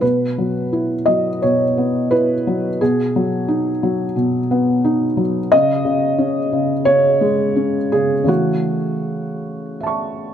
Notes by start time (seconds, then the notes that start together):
0.01 B2 B4
0.38 F#3
0.73 E4
1.06 F#3 D#5
1.42 B2 C#5
1.78 B3
2.11 E4 B4
2.47 F#3
2.81 B2 G#4
3.16 F#3
3.48 D#4
3.83 F#3
4.16 B2
4.51 B3
4.85 D#4
5.17 F#3
5.52 C#3 D#5
5.85 C#3
6.18 C#4
6.52 C#3
6.85 C#3 C#5
7.21 G#3
7.56 C#4
7.92 C#3 G#4
8.24 C#3 E3 A3 C#4
8.28 F#4
9.80 E5 A5
9.87 C#6